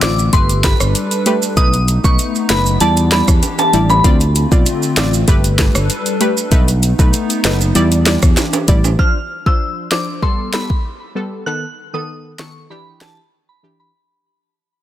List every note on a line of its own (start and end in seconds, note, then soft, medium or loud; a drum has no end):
0.00 0.28 A1 medium
0.00 0.32 D3 medium
0.00 0.32 A3 medium
0.00 0.32 C4 medium
0.00 0.31 C4 medium
0.00 0.32 F4 medium
0.00 0.31 F4 medium
0.00 0.31 D5 medium
0.00 0.16 D6 medium
0.00 snare loud
0.00 clap medium
0.00 closed hi-hat medium
0.00 maracas medium
0.19 maracas medium
0.33 0.73 G1 loud
0.33 1.56 G3 medium
0.33 0.62 A3 medium
0.33 1.56 D4 medium
0.33 0.62 G4 medium
0.33 1.56 A4 medium
0.33 0.62 B4 loud
0.33 1.56 B4 medium
0.33 0.47 C6 medium
0.33 kick medium
0.33 closed hi-hat medium
0.33 maracas medium
0.49 closed hi-hat medium
0.49 maracas medium
0.64 0.83 A3 medium
0.64 0.83 G4 medium
0.64 0.83 B4 medium
0.64 0.78 B5 medium
0.64 kick medium
0.64 snare loud
0.64 clap medium
0.64 closed hi-hat medium
0.64 maracas medium
0.80 0.93 G1 medium
0.80 cross-stick loud
0.80 maracas medium
0.95 closed hi-hat medium
0.95 maracas medium
1.11 closed hi-hat soft
1.11 maracas medium
1.26 1.54 A3 medium
1.26 1.55 G4 medium
1.26 1.55 B4 medium
1.26 closed hi-hat medium
1.26 maracas medium
1.42 maracas medium
1.57 1.97 B1 loud
1.57 1.76 A3 loud
1.57 2.79 A3 medium
1.57 4.02 B3 medium
1.57 2.79 D#4 medium
1.57 1.76 D#4 medium
1.57 1.76 B4 loud
1.57 1.71 D#6 loud
1.57 kick loud
1.57 closed hi-hat medium
1.57 maracas medium
1.73 closed hi-hat medium
1.73 maracas soft
1.88 closed hi-hat medium
1.88 maracas medium
2.04 2.17 B1 medium
2.04 2.46 A3 medium
2.04 2.46 D#4 medium
2.04 2.46 B4 medium
2.04 2.17 C#6 medium
2.04 kick loud
2.04 maracas medium
2.19 closed hi-hat medium
2.19 maracas medium
2.35 maracas medium
2.50 2.76 F#1 medium
2.50 2.78 A3 medium
2.50 2.78 D#4 medium
2.50 2.79 B4 medium
2.50 2.64 B5 medium
2.50 snare loud
2.50 clap medium
2.50 closed hi-hat medium
2.50 maracas medium
2.66 maracas medium
2.80 3.21 E2 loud
2.80 4.03 E3 medium
2.80 3.09 G3 loud
2.80 4.03 D4 medium
2.80 3.09 E4 medium
2.80 4.03 G4 medium
2.80 3.09 D5 loud
2.80 2.95 A5 medium
2.80 closed hi-hat medium
2.80 maracas medium
2.97 closed hi-hat medium
2.97 maracas medium
3.12 3.30 G3 medium
3.12 3.30 E4 medium
3.12 3.31 D5 medium
3.12 3.26 B5 medium
3.12 snare loud
3.12 clap medium
3.12 closed hi-hat medium
3.12 maracas medium
3.28 3.40 E2 loud
3.28 kick loud
3.28 cross-stick loud
3.28 maracas medium
3.43 closed hi-hat medium
3.43 high timbale soft
3.43 maracas medium
3.59 3.71 A5 medium
3.59 closed hi-hat medium
3.59 high timbale medium
3.59 maracas medium
3.73 4.00 A1 medium
3.73 4.02 G3 medium
3.73 4.02 E4 medium
3.73 4.02 D5 medium
3.73 closed hi-hat medium
3.73 maracas medium
3.90 4.02 B5 medium
3.90 high timbale medium
3.90 maracas medium
4.04 4.44 D2 loud
4.04 5.27 D3 medium
4.04 5.27 A3 medium
4.04 4.23 C4 medium
4.04 5.27 C4 medium
4.04 4.23 F4 medium
4.04 5.27 F4 medium
4.04 4.23 D5 loud
4.04 kick loud
4.04 closed hi-hat medium
4.04 maracas medium
4.21 closed hi-hat medium
4.21 maracas medium
4.35 closed hi-hat medium
4.35 maracas medium
4.51 4.64 B1 medium
4.51 4.93 C4 medium
4.51 4.94 F4 medium
4.51 4.94 D5 medium
4.51 kick medium
4.51 maracas medium
4.66 closed hi-hat medium
4.66 maracas medium
4.83 maracas medium
4.97 5.23 A1 loud
4.97 5.25 C4 medium
4.97 5.26 F4 medium
4.97 5.26 D5 medium
4.97 snare loud
4.97 clap medium
4.97 closed hi-hat medium
4.97 maracas medium
5.14 maracas medium
5.28 5.68 G1 loud
5.28 6.51 G3 medium
5.28 5.56 A3 loud
5.28 6.51 D4 medium
5.28 5.57 G4 medium
5.28 6.50 A4 medium
5.28 6.50 B4 medium
5.28 5.57 B4 loud
5.28 kick medium
5.28 closed hi-hat medium
5.28 maracas medium
5.44 closed hi-hat medium
5.44 maracas medium
5.58 5.78 A3 medium
5.58 5.78 G4 medium
5.58 5.78 B4 medium
5.58 kick medium
5.58 snare loud
5.58 clap medium
5.58 closed hi-hat medium
5.58 maracas medium
5.75 5.88 G1 medium
5.75 cross-stick loud
5.75 maracas medium
5.90 closed hi-hat medium
5.90 maracas medium
6.06 closed hi-hat medium
6.06 maracas medium
6.20 6.49 A3 medium
6.20 6.49 G4 medium
6.20 6.49 B4 medium
6.20 closed hi-hat medium
6.20 maracas medium
6.37 maracas medium
6.51 6.92 B1 loud
6.51 6.70 A3 loud
6.51 7.74 A3 medium
6.51 8.97 B3 medium
6.51 7.74 D#4 medium
6.51 6.71 D#4 medium
6.51 6.71 B4 loud
6.51 kick loud
6.51 closed hi-hat medium
6.51 maracas medium
6.68 closed hi-hat medium
6.68 maracas soft
6.83 closed hi-hat medium
6.83 maracas medium
6.99 7.11 B1 medium
6.99 7.41 A3 medium
6.99 7.41 D#4 medium
6.99 7.41 B4 medium
6.99 kick medium
6.99 maracas medium
7.13 closed hi-hat medium
7.13 maracas medium
7.30 closed hi-hat medium
7.30 maracas medium
7.44 7.71 F#1 loud
7.44 7.73 A3 medium
7.44 7.73 D#4 medium
7.44 7.73 B4 medium
7.44 snare loud
7.44 clap medium
7.44 closed hi-hat medium
7.44 maracas medium
7.61 maracas medium
7.75 8.16 E2 loud
7.75 8.98 E3 medium
7.75 8.04 G3 loud
7.75 8.98 D4 medium
7.75 8.04 E4 medium
7.75 8.98 G4 medium
7.75 8.04 D5 loud
7.75 closed hi-hat medium
7.75 maracas medium
7.92 closed hi-hat medium
7.92 maracas medium
8.06 8.25 G3 medium
8.06 8.25 E4 medium
8.06 8.25 D5 medium
8.06 snare loud
8.06 clap medium
8.06 closed hi-hat medium
8.06 maracas medium
8.22 8.35 E2 medium
8.22 kick loud
8.22 cross-stick loud
8.22 maracas medium
8.37 snare medium
8.37 closed hi-hat medium
8.37 high timbale soft
8.37 maracas medium
8.53 closed hi-hat medium
8.53 high timbale medium
8.53 maracas medium
8.68 8.95 A1 medium
8.68 8.97 G3 medium
8.68 8.97 E4 medium
8.68 8.97 D5 medium
8.68 kick medium
8.68 closed hi-hat medium
8.68 maracas medium
8.84 high timbale medium
8.84 maracas medium
8.99 9.18 F3 loud
8.99 9.18 D4 medium
8.99 9.18 C5 loud
8.99 9.13 F6 medium
8.99 kick loud
9.46 9.88 F3 medium
9.46 9.88 D4 medium
9.46 9.88 C5 medium
9.46 9.59 E6 medium
9.46 kick medium
9.91 10.20 F3 medium
9.91 10.20 D4 medium
9.91 10.20 C5 medium
9.91 10.06 D6 medium
9.91 snare loud
9.91 clap medium
10.22 10.51 G3 medium
10.22 10.51 B3 medium
10.22 10.51 A4 loud
10.22 10.37 C6 medium
10.22 kick medium
10.53 10.72 G3 medium
10.53 10.72 B3 medium
10.53 10.73 A4 medium
10.53 10.67 B5 medium
10.53 snare loud
10.53 clap medium
10.70 kick loud
11.15 11.44 G3 medium
11.15 11.44 B3 medium
11.15 11.44 A4 medium
11.46 11.65 D#3 medium
11.46 11.65 B3 medium
11.46 11.65 A4 loud
11.46 11.60 F#6 medium
11.93 12.36 D#3 medium
11.93 12.36 B3 medium
11.93 12.36 A4 medium
11.93 12.06 D#6 medium
12.39 12.68 D#3 medium
12.39 12.68 B3 medium
12.39 12.68 A4 medium
12.39 12.53 C#6 medium
12.39 snare loud
12.39 clap medium
12.70 12.99 E3 medium
12.70 12.99 D4 medium
12.70 12.99 G4 loud
12.70 12.84 B5 medium
13.01 13.20 E3 medium
13.01 13.20 D4 medium
13.01 13.20 G4 medium
13.01 13.15 A5 medium
13.01 snare loud
13.01 clap medium
13.49 13.61 B5 medium
13.63 13.92 E3 medium
13.63 13.92 D4 medium
13.63 13.92 G4 medium
13.80 13.92 B5 medium